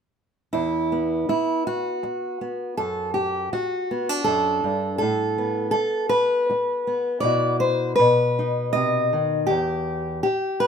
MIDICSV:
0, 0, Header, 1, 3, 480
1, 0, Start_track
1, 0, Key_signature, 1, "minor"
1, 0, Tempo, 747198
1, 345, Time_signature, 3, 2, 24, 8
1, 6855, End_track
2, 0, Start_track
2, 0, Title_t, "Steel-string acoustic guitar"
2, 0, Program_c, 0, 25
2, 339, Note_on_c, 0, 64, 84
2, 345, Note_on_c, 0, 40, 70
2, 592, Note_on_c, 0, 59, 44
2, 819, Note_off_c, 0, 40, 0
2, 821, Note_off_c, 0, 64, 0
2, 830, Note_on_c, 0, 64, 79
2, 1069, Note_off_c, 0, 64, 0
2, 1072, Note_on_c, 0, 66, 86
2, 1542, Note_off_c, 0, 59, 0
2, 1549, Note_on_c, 0, 59, 40
2, 1760, Note_off_c, 0, 59, 0
2, 1779, Note_off_c, 0, 66, 0
2, 1782, Note_on_c, 0, 69, 89
2, 1785, Note_on_c, 0, 42, 64
2, 2014, Note_off_c, 0, 69, 0
2, 2017, Note_on_c, 0, 67, 78
2, 2259, Note_off_c, 0, 42, 0
2, 2261, Note_off_c, 0, 67, 0
2, 2267, Note_on_c, 0, 66, 85
2, 2512, Note_on_c, 0, 59, 46
2, 2629, Note_off_c, 0, 59, 0
2, 2629, Note_on_c, 0, 62, 35
2, 2723, Note_off_c, 0, 66, 0
2, 2726, Note_on_c, 0, 69, 89
2, 2738, Note_on_c, 0, 42, 54
2, 2977, Note_off_c, 0, 42, 0
2, 2980, Note_on_c, 0, 43, 57
2, 3193, Note_off_c, 0, 69, 0
2, 3201, Note_on_c, 0, 69, 92
2, 3219, Note_off_c, 0, 43, 0
2, 3222, Note_off_c, 0, 62, 0
2, 3222, Note_on_c, 0, 45, 69
2, 3458, Note_on_c, 0, 59, 42
2, 3661, Note_off_c, 0, 69, 0
2, 3668, Note_on_c, 0, 69, 96
2, 3679, Note_off_c, 0, 45, 0
2, 3912, Note_off_c, 0, 69, 0
2, 3915, Note_on_c, 0, 71, 97
2, 4412, Note_off_c, 0, 59, 0
2, 4415, Note_on_c, 0, 59, 43
2, 4625, Note_off_c, 0, 71, 0
2, 4628, Note_on_c, 0, 74, 106
2, 4643, Note_on_c, 0, 47, 67
2, 4651, Note_on_c, 0, 64, 47
2, 4659, Note_off_c, 0, 59, 0
2, 4661, Note_on_c, 0, 66, 48
2, 4879, Note_off_c, 0, 74, 0
2, 4882, Note_on_c, 0, 72, 96
2, 5099, Note_off_c, 0, 47, 0
2, 5103, Note_off_c, 0, 64, 0
2, 5108, Note_off_c, 0, 66, 0
2, 5108, Note_off_c, 0, 72, 0
2, 5111, Note_on_c, 0, 71, 99
2, 5134, Note_on_c, 0, 47, 71
2, 5389, Note_on_c, 0, 63, 46
2, 5603, Note_off_c, 0, 71, 0
2, 5606, Note_on_c, 0, 75, 101
2, 5621, Note_on_c, 0, 48, 52
2, 5860, Note_off_c, 0, 48, 0
2, 5864, Note_on_c, 0, 51, 54
2, 6071, Note_off_c, 0, 47, 0
2, 6077, Note_off_c, 0, 63, 0
2, 6081, Note_on_c, 0, 67, 96
2, 6094, Note_off_c, 0, 75, 0
2, 6102, Note_off_c, 0, 51, 0
2, 6104, Note_on_c, 0, 40, 67
2, 6564, Note_off_c, 0, 67, 0
2, 6572, Note_on_c, 0, 67, 89
2, 6583, Note_off_c, 0, 40, 0
2, 6810, Note_on_c, 0, 71, 100
2, 6855, Note_off_c, 0, 67, 0
2, 6855, Note_off_c, 0, 71, 0
2, 6855, End_track
3, 0, Start_track
3, 0, Title_t, "Muted steel-string acoustic guitar strokes"
3, 827, Note_on_c, 9, 29, 68
3, 891, Note_off_c, 9, 29, 0
3, 1305, Note_on_c, 9, 29, 57
3, 1369, Note_off_c, 9, 29, 0
3, 2266, Note_on_c, 9, 29, 62
3, 2330, Note_off_c, 9, 29, 0
3, 3682, Note_on_c, 9, 29, 70
3, 3747, Note_off_c, 9, 29, 0
3, 4173, Note_on_c, 9, 29, 55
3, 4237, Note_off_c, 9, 29, 0
3, 6589, Note_on_c, 9, 29, 64
3, 6654, Note_off_c, 9, 29, 0
3, 6855, End_track
0, 0, End_of_file